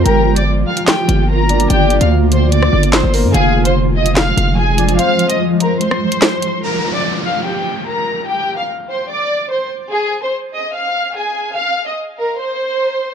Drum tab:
HH |x--x---xx-x---xx|x-xx--x-x--x--o-|x--x---xx-x---xx|x-xx--x-x--x--x-|
CP |--------x-------|------------x---|--------x-------|------------x---|
SD |--------o-------|---------r--o---|--------o-------|---------r--o---|

HH |----------------|----------------|----------------|----------------|
CP |----------------|----------------|----------------|----------------|
SD |----------------|----------------|----------------|----------------|